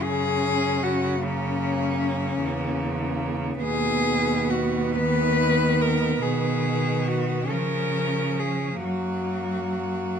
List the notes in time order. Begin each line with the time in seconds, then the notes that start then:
Already playing: F#2
0.03 C#3 C#4 G#4
0.83 F#4
1.24 A#3 C#4
2.42 E2 A#3
3.63 D#2 B2 B3 G#4
4.50 F#4
4.96 D#3 B4
5.81 A#4
6.22 B2 D#3 G#4
7.08 F#4
7.49 C#3 F3 C#4 A#4
8.40 G#4
8.84 F#2 F#3 A#3 F#4